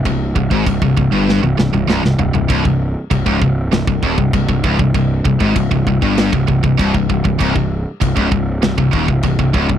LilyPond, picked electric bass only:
\new Staff \with { instrumentName = "Picked electric bass" } { \clef bass \time 4/4 \key c \phrygian \tempo 4 = 98 c,,8 c,,16 aes,,16 c,,16 c,,16 c,,16 g,,8 c,,16 c,,16 c,,16 c,,16 c,,16 c,,16 c,,16 | c,,16 c,,8 r16 c,,16 des,,16 c,,8 c,,16 c,,16 ees,,16 c,,16 c,,16 c,,16 des,,16 c,,16 | c,,8 c,,16 aes,,16 c,,16 c,,16 c,,16 g,,8 c,,16 c,,16 c,,16 c,,16 c,,16 c,,16 c,,16 | c,,16 c,,8 r16 c,,16 des,,16 c,,8 c,,16 c,,16 ees,,16 c,,16 c,,16 c,,16 des,,16 c,,16 | }